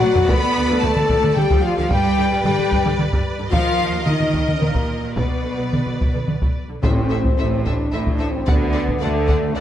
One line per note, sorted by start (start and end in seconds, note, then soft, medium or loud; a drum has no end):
0.00 0.29 F#3 loud
0.00 0.28 F#4 loud
0.00 0.29 B4 medium
0.00 1.89 D5 medium
0.00 0.28 F#5 loud
0.00 taiko high loud
0.14 0.21 B1 medium
0.14 0.20 D3 medium
0.14 taiko low loud
0.27 0.34 D2 loud
0.27 0.34 F3 loud
0.27 0.83 B3 loud
0.27 1.91 A4 medium
0.27 0.83 B4 loud
0.27 0.82 B5 loud
0.27 0.58 B5 loud
0.27 taiko loud
0.56 0.61 D2 medium
0.56 0.61 D3 medium
0.69 0.75 D2 loud
0.69 0.75 F3 loud
0.82 0.88 D2 medium
0.82 0.88 D3 medium
0.82 1.37 A3 medium
0.82 1.37 A4 loud
0.82 1.36 A5 loud
0.82 1.34 A5 medium
0.82 taiko mid medium
0.96 1.02 D2 medium
0.96 1.02 D3 medium
0.96 taiko mid medium
1.09 1.16 D2 loud
1.09 1.15 F3 loud
1.09 taiko medium
1.23 1.28 D2 medium
1.23 1.28 D3 medium
1.23 taiko mid medium
1.35 1.42 D2 medium
1.35 1.42 D3 medium
1.35 1.63 G3 medium
1.35 1.64 G4 loud
1.35 1.63 G5 medium
1.35 taiko mid medium
1.49 1.55 D2 loud
1.49 1.56 F3 loud
1.49 taiko medium
1.61 1.75 F3 medium
1.61 1.76 F4 loud
1.61 1.76 F5 loud
1.61 1.75 F5 medium
1.76 1.82 D2 medium
1.76 1.83 D3 medium
1.76 1.90 F3 medium
1.76 1.91 F4 loud
1.76 1.90 F5 medium
1.76 1.92 F5 medium
1.89 1.96 G2 loud
1.89 2.43 G3 loud
1.89 1.97 G3 loud
1.89 2.28 G4 loud
1.89 3.49 B4 medium
1.89 3.49 D5 medium
1.89 2.43 G5 loud
1.89 2.45 G5 loud
1.89 taiko loud
2.18 2.23 G2 medium
2.18 2.23 D3 medium
2.31 2.37 G2 loud
2.31 2.37 G3 medium
2.44 2.50 G2 medium
2.44 2.50 D3 medium
2.44 2.97 G3 medium
2.44 2.97 G4 loud
2.44 2.97 G5 medium
2.44 2.98 G5 medium
2.44 taiko mid medium
2.58 2.64 G2 medium
2.58 2.64 D3 medium
2.58 taiko mid medium
2.71 2.77 G2 medium
2.71 2.77 G3 medium
2.71 taiko medium
2.84 2.90 G2 medium
2.84 2.91 D3 medium
2.84 taiko mid medium
2.98 3.03 G2 medium
2.98 3.04 D3 medium
2.98 taiko mid medium
3.11 3.16 G2 medium
3.11 3.18 G3 medium
3.11 taiko medium
3.38 3.44 G2 medium
3.38 3.44 D3 medium
3.50 3.57 D#2 medium
3.50 4.02 F3 loud
3.50 3.57 G3 medium
3.50 4.01 F4 loud
3.50 5.13 A#4 medium
3.50 5.17 D#5 medium
3.50 4.02 F5 loud
3.50 4.07 F5 loud
3.50 taiko loud
3.79 3.84 D#2 medium
3.79 3.85 D#3 medium
3.92 3.98 D#2 medium
3.92 3.98 G3 medium
4.05 4.11 D#2 medium
4.05 4.60 D#3 medium
4.05 4.12 D#3 medium
4.05 4.61 D#4 medium
4.05 4.61 D#5 medium
4.05 4.62 D#5 medium
4.05 taiko mid medium
4.20 4.25 D#2 medium
4.20 4.26 D#3 medium
4.20 taiko mid medium
4.33 4.39 D#2 medium
4.33 4.39 G3 medium
4.33 taiko medium
4.47 4.53 D#2 soft
4.47 4.53 D#3 medium
4.47 taiko mid soft
4.60 4.67 D#2 soft
4.60 5.15 A#2 medium
4.60 4.66 D#3 medium
4.60 5.17 A#3 medium
4.60 5.17 A#4 medium
4.60 taiko mid medium
4.75 4.80 D#2 medium
4.75 4.81 G3 medium
4.75 taiko medium
5.02 5.08 D#2 soft
5.02 5.08 D#3 medium
5.16 5.22 B1 medium
5.16 6.28 B2 medium
5.16 5.22 F#3 medium
5.16 6.28 B3 medium
5.16 6.60 B4 medium
5.16 6.26 B4 medium
5.16 6.60 D5 medium
5.16 taiko loud
5.44 5.50 B1 soft
5.44 5.50 D3 soft
5.57 5.63 B1 medium
5.57 5.64 F#3 medium
5.72 5.78 B1 soft
5.72 5.78 D3 soft
5.72 taiko mid medium
5.85 5.91 B1 soft
5.85 5.92 D3 soft
5.85 taiko mid soft
6.00 6.06 B1 medium
6.00 6.05 F#3 medium
6.00 taiko medium
6.14 6.20 B1 soft
6.14 6.20 D3 soft
6.14 taiko mid soft
6.27 6.33 B1 soft
6.27 6.33 D3 soft
6.27 taiko mid medium
6.41 6.47 B1 medium
6.41 6.47 F#3 medium
6.41 taiko medium
6.69 6.75 B1 soft
6.69 6.75 D3 soft
6.83 7.31 A1 medium
6.83 7.61 A2 loud
6.83 7.32 A2 medium
6.83 7.61 C4 loud
6.83 6.91 A4 medium
6.83 6.92 C5 medium
6.83 6.91 E5 medium
6.83 taiko loud
7.10 7.18 A4 medium
7.10 7.18 C5 medium
7.10 7.19 E5 medium
7.25 taiko medium
7.37 7.86 A1 medium
7.37 7.86 A2 medium
7.37 7.45 A4 medium
7.37 7.46 C5 medium
7.37 7.46 E5 medium
7.65 7.92 D4 medium
7.65 7.74 A4 medium
7.65 7.74 C5 medium
7.65 7.73 E5 medium
7.65 taiko medium
7.92 8.41 A1 medium
7.92 8.41 A2 medium
7.92 8.11 E4 medium
7.92 8.00 A4 medium
7.92 8.01 C5 medium
7.92 8.01 E5 medium
8.07 taiko medium
8.12 8.29 D4 medium
8.19 8.28 A4 medium
8.19 8.27 C5 medium
8.19 8.28 E5 medium
8.31 8.48 C4 loud
8.46 8.95 D2 medium
8.46 8.95 D3 medium
8.46 9.01 B3 loud
8.46 8.54 A4 medium
8.46 8.54 D5 medium
8.46 8.55 F#5 medium
8.46 taiko loud
8.73 8.82 A4 medium
8.73 8.81 D5 medium
8.73 8.82 F#5 medium
8.88 taiko medium
9.00 9.49 D2 medium
9.00 9.49 D3 medium
9.00 9.55 A3 loud
9.00 9.09 A4 medium
9.00 9.08 D5 medium
9.00 9.10 F#5 medium
9.28 9.36 A4 medium
9.28 9.36 D5 medium
9.28 9.36 F#5 medium
9.28 taiko medium
9.54 9.60 D2 medium
9.54 9.60 D3 medium
9.54 9.60 D4 loud
9.54 9.60 A4 medium
9.54 9.60 D5 medium
9.54 9.60 F#5 medium